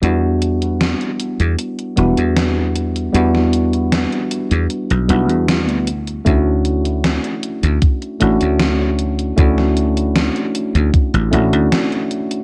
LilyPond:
<<
  \new Staff \with { instrumentName = "Tine electric piano" } { \time 4/4 \key e \dorian \tempo 4 = 77 <g b d' e' fis'>2~ <g b d' e' fis'>8 <g b d' e' fis'>4. | <g b d' e' fis'>2~ <g b d' e' fis'>8 <g b d' e' fis'>4 r8 | <a cis' d' e' fis'>2~ <a cis' d' e' fis'>8 <a cis' d' e' fis'>4. | <a cis' d' e' fis'>2~ <a cis' d' e' fis'>8 <a cis' d' e' fis'>4. | }
  \new Staff \with { instrumentName = "Slap bass" } { \clef bass \time 4/4 \key e \dorian e,4~ e,16 r8 e,16 r8 e,,16 e,4~ e,16 | e,4~ e,16 r8 e,16 r16 b,,16 b,,16 e,8 d,8. | d,4~ d,16 r8 d,16 r8 a,,16 d,4~ d,16 | d,4~ d,16 r8 d,16 r16 a,,16 a,,16 d,16 r4 | }
  \new DrumStaff \with { instrumentName = "Drums" } \drummode { \time 4/4 hh8 hh16 hh16 <hh sn>16 hh16 hh16 hh16 hh16 hh16 hh16 hh16 <hh sn>8 hh16 hh16 | hh16 sn16 hh16 hh16 <hh sn>16 hh16 hh16 hh16 hh16 hh16 hh16 hh16 <hh sn>16 hh16 hh16 hh16 | <hh bd>8 hh16 hh16 <hh sn>16 hh16 hh16 hh16 <hh bd>16 hh16 hh16 hh16 <hh sn>8 hh16 hh16 | <hh bd>16 sn16 hh16 hh16 <hh sn>16 hh16 hh16 hh16 <hh bd>16 hh16 hh16 hh16 <hh sn>16 hh16 hh16 hh16 | }
>>